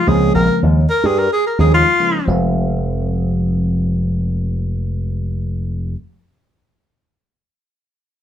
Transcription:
0.07 C#2 C#3 F3 G#3 A#3 C4 G#4
0.35 A#1 A#4
0.49 muted slap bass stroke
0.63 D#2
0.90 A#4
1.03 G2 G#4
1.19 A#4
1.33 G#4
1.46 A#4
1.58 D#2 C#3 F3 G#3 A#3 D#4 G#4
1.74 F4
2.00 C#3 F3 G#3 A#3 C#4
2.26 F1 F3 G#3
2.30 C4

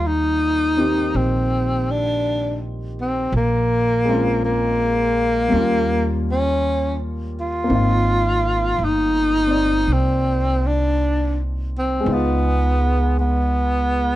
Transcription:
Already playing: D#2 G3 A#3 F4 D5
0.07 D#4
0.77 D#3 C4 G4
1.14 A#1 C4
1.91 D4
3.01 C4
3.32 A#1 A#3
4.05 G#3 C4
4.09 C#4 F4
4.45 A#3
5.48 D#2 G3 A#3 C#4
5.54 F4
6.31 C#4
7.40 F4
7.64 A#3 C4
7.70 G#1 D#3
7.75 F4
8.78 G1
8.84 D#4
9.47 C4 D5
9.87 C2
9.93 C4
10.67 D4
11.78 C4
12.00 G#3 B3
12.06 C#2 D#4
12.12 B3 F4
13.19 B3

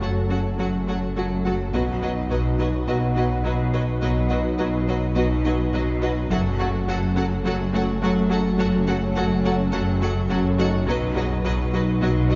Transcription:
Already playing: F#1 F#3 A3 C#4 F#4 A4
0.01 F#1 F#2 F#3 F#4 A4 F#5
0.30 F#3 C#4 F#4 A4 F#5
0.59 F#1 F#2 F#3 F#4 A4 F#5
0.88 F#3 A3 F#4 A4 F#5
1.16 F#1 F#2 F#3 A3 F#4 A4 F#5
1.45 F#3 F#4 A4 F#5
1.73 B1 B2 F#3 B3 D#4 F#4 B4 D#5 F#5
2.02 F#3 F#4 B4 D#5
2.30 B1 B2 F#3 F#4 B4 D#5
2.58 F#3 D#4 F#4 B4 D#5
2.87 B1 B2 F#3 B3 F#4 B4 D#5 F#5
3.16 F#3 D#4 F#4 B4 D#5
3.44 B1 B2 F#3 D#4 F#4 B4 D#5
3.73 F#3 F#4 B4 D#5
4.01 B1 B2 F#3 B3 F#4 B4 D#5
4.30 F#3 F#4 B4 D#5
4.58 B1 B2 F#3 F#4 B4 D#5
4.87 F#3 F#4 B4 C#5 D#5
5.15 B1 B2 F#3 B3 F#4 B4 D#5
5.44 F#3 D#4 F#4 B4 D#5
5.73 B1 B2 F#3 D#4 F#4 B4 D#5
6.02 F#3 F#4 B4 D#5
6.29 F#1 F#2 F#3 A3 C#4 F#4 A4 E5 F#5
6.59 F#3 F#4 A4 F#5
6.87 F#1 F#2 F#3 F#4 A4 F#5
7.16 F#3 C#4 F#4 A4 F#5
7.44 F#1 F#2 F#3 F#4 A4 F#5
7.73 F#3 A3 F#4 A4 F#5
8.02 F#1 F#2 F#3 A3 F#4 A4 F#5
8.30 F#3 F#4 A4 F#5
8.58 F#1 F#2 F#3 F#4 A4 F#5
8.87 F#3 F#4 A4 F#5
9.15 F#1 F#2 F#3 F#4 A4 F#5
9.44 F#3 C#4 F#4 A4 F#5
9.72 F#1 F#2 F#3 F#4 A4 F#5
10.01 F#3 A3 F#4 A4 F#5
10.30 F#1 F#2 F#3 A3 F#4 A4 F#5
10.59 F#3 D#4 F#4 A4 D#5 F#5
10.87 B1 B2 F#3 B3 D#4 F#4 B4 D#5
11.15 F#3 F#4 G#4 B4 D#5
11.44 B1 B2 F#3 F#4 B4 D#5
11.73 F#3 F#4 B4 D#5
12.01 B1 B2 F#3 B3 F#4 B4 D#5
12.30 F#3 D#4 F#4 B4 D#5

